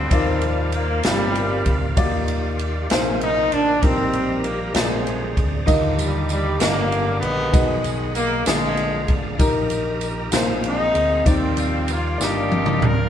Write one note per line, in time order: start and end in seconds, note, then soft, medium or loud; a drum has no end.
0.00 0.12 G2 medium
0.00 0.70 F3 medium
0.00 0.70 G3 medium
0.00 0.13 B3 medium
0.00 0.44 C4 loud
0.00 0.13 D4 medium
0.00 0.11 F4 medium
0.00 0.12 F4 medium
0.00 0.12 G4 medium
0.00 0.12 B4 medium
0.00 0.12 D5 medium
0.00 2.87 D5 medium
0.00 0.12 G5 medium
0.11 1.00 D#2 loud
0.11 1.00 D#3 medium
0.11 0.68 C4 medium
0.11 0.69 D#4 medium
0.11 0.69 F4 medium
0.11 3.79 F4 medium
0.11 0.69 A#4 medium
0.11 1.96 A#4 medium
0.11 0.69 D5 loud
0.11 2.87 F5 medium
0.11 kick loud
0.11 ride medium
0.41 ride soft
0.72 1.03 A#3 medium
0.72 ride soft
1.03 1.62 G1 medium
1.03 1.94 A#2 medium
1.03 1.93 C3 medium
1.03 1.74 G3 loud
1.03 1.61 C4 medium
1.03 1.62 D#4 medium
1.03 1.62 F4 medium
1.03 1.62 A#4 medium
1.03 1.62 F5 medium
1.03 snare loud
1.03 ride medium
1.35 ride soft
1.66 1.94 D2 medium
1.66 kick medium
1.66 ride soft
1.96 2.85 D#2 loud
1.96 2.85 D#3 medium
1.96 2.53 A#3 loud
1.96 2.54 D#4 medium
1.96 2.54 F4 medium
1.96 2.03 F#4 medium
1.96 2.88 G4 medium
1.96 2.54 D5 loud
1.96 kick loud
1.96 ride medium
2.04 2.57 G4 medium
2.28 ride soft
2.59 ride soft
2.90 3.48 A#1 medium
2.90 3.79 C3 medium
2.90 3.47 A#3 medium
2.90 3.47 D#4 medium
2.90 3.47 F4 medium
2.90 3.47 G#4 medium
2.90 4.73 A#4 medium
2.90 3.81 C5 medium
2.90 3.47 C5 medium
2.90 3.82 G#5 medium
2.90 snare loud
2.90 ride medium
3.21 3.51 D#4 loud
3.21 ride soft
3.52 3.80 A1 medium
3.52 3.83 D4 loud
3.52 ride soft
3.80 4.71 A#1 loud
3.80 4.70 A#2 medium
3.80 4.71 D#3 medium
3.80 4.71 G3 medium
3.80 4.44 C4 loud
3.80 4.39 D#4 medium
3.80 4.73 G4 medium
3.80 4.39 G4 medium
3.80 4.39 A#4 medium
3.80 4.73 D#5 medium
3.80 5.65 A#5 medium
3.80 kick loud
3.80 ride medium
4.13 ride soft
4.44 4.73 A#3 medium
4.44 ride soft
4.73 5.33 A#1 loud
4.73 5.63 A#2 medium
4.73 5.64 C3 medium
4.73 5.64 D3 medium
4.73 5.44 G#3 medium
4.73 5.31 C4 medium
4.73 5.32 F4 medium
4.73 5.31 G#4 medium
4.73 5.67 G#4 medium
4.73 5.32 A#4 medium
4.73 5.67 C5 medium
4.73 5.32 D5 medium
4.73 5.67 D5 medium
4.73 snare loud
4.73 ride medium
5.07 ride soft
5.37 5.65 D2 medium
5.37 kick medium
5.37 ride soft
5.65 6.57 D#2 loud
5.65 6.24 D3 loud
5.65 6.56 D#3 medium
5.65 6.24 F4 medium
5.65 7.50 G4 medium
5.65 6.24 G4 medium
5.65 6.25 A#4 medium
5.65 8.43 D#5 medium
5.65 6.25 D#5 loud
5.65 7.50 F5 medium
5.65 7.50 D6 medium
5.65 kick loud
5.65 ride medium
5.65 tambourine medium
5.99 6.27 G3 medium
5.99 ride soft
5.99 tambourine medium
6.29 6.59 G3 medium
6.29 ride soft
6.29 tambourine medium
6.59 7.18 G1 medium
6.59 7.17 D3 medium
6.59 7.50 D3 medium
6.59 7.50 G3 medium
6.59 7.17 A#3 loud
6.59 7.17 F4 medium
6.59 7.18 G4 medium
6.59 7.18 A#4 medium
6.59 7.18 D#5 medium
6.59 snare loud
6.59 ride medium
6.59 tambourine medium
6.92 ride soft
7.20 7.51 A#1 medium
7.20 8.11 D#3 medium
7.20 8.11 G#3 medium
7.20 7.79 B3 loud
7.20 ride soft
7.51 8.43 B1 loud
7.51 8.42 B2 medium
7.51 8.10 B3 medium
7.51 8.10 D#4 medium
7.51 8.10 F#4 medium
7.51 8.10 G#4 medium
7.51 8.46 G#4 medium
7.51 8.11 D#5 loud
7.51 8.46 F#5 medium
7.51 8.46 B5 medium
7.51 kick loud
7.51 ride medium
7.51 tambourine medium
7.84 ride soft
7.84 tambourine medium
8.15 8.44 A#3 loud
8.15 ride soft
8.15 tambourine medium
8.45 9.04 A#1 loud
8.45 9.35 D3 medium
8.45 9.36 D3 medium
8.45 9.36 F3 medium
8.45 9.12 G#3 loud
8.45 9.03 A#3 medium
8.45 9.04 D4 medium
8.45 9.04 F4 medium
8.45 9.04 G#4 medium
8.45 9.40 G#4 medium
8.45 9.04 D5 medium
8.45 9.39 D5 medium
8.45 9.39 F5 medium
8.45 11.24 A#5 medium
8.45 snare loud
8.45 ride medium
8.45 tambourine loud
8.77 ride soft
9.08 9.37 A1 loud
9.08 kick medium
9.08 ride soft
9.39 10.29 A#1 loud
9.39 10.29 A#2 medium
9.39 9.97 D#4 loud
9.39 9.97 G4 loud
9.39 10.32 G4 medium
9.39 9.97 A#4 loud
9.39 10.32 A#4 medium
9.39 10.32 D#5 medium
9.39 kick loud
9.39 ride medium
9.39 tambourine medium
9.70 ride soft
9.70 tambourine soft
10.01 ride soft
10.01 tambourine soft
10.31 10.91 A#1 loud
10.31 11.22 A#2 medium
10.31 10.90 A#3 medium
10.31 10.90 D#4 medium
10.31 10.90 F4 medium
10.31 10.90 G#4 medium
10.31 11.25 G#4 medium
10.31 11.25 C5 medium
10.31 10.90 C5 medium
10.31 13.09 F5 medium
10.31 snare loud
10.31 ride medium
10.31 tambourine loud
10.64 11.23 G#3 medium
10.64 11.23 C4 medium
10.64 11.23 D#4 loud
10.64 ride soft
10.94 11.23 D2 medium
10.94 ride soft
11.24 12.15 D#2 loud
11.24 12.15 D#3 medium
11.24 12.16 G3 medium
11.24 11.84 A#3 medium
11.24 11.83 D#4 medium
11.24 13.09 F4 medium
11.24 11.83 F4 medium
11.24 11.84 G4 medium
11.24 13.09 D5 medium
11.24 11.84 D5 medium
11.24 13.09 G5 medium
11.24 kick loud
11.24 ride medium
11.24 tambourine medium
11.29 12.17 F3 medium
11.29 11.90 C4 loud
11.57 ride soft
11.57 tambourine soft
11.88 12.19 A#3 medium
11.88 ride soft
11.88 tambourine medium
11.93 12.20 F4 medium
12.18 12.77 G1 medium
12.18 12.76 D#3 medium
12.18 13.09 G3 medium
12.18 12.76 A#3 medium
12.18 13.09 A#3 medium
12.18 13.09 D4 medium
12.18 12.90 D#4 loud
12.18 12.77 F4 medium
12.18 12.77 G4 medium
12.18 12.76 D5 medium
12.18 snare medium
12.18 tambourine medium
12.23 12.83 G4 loud
12.52 high tom medium
12.66 mid tom medium
12.81 13.09 D2 loud
12.81 13.09 A#4 loud
12.81 mid tom loud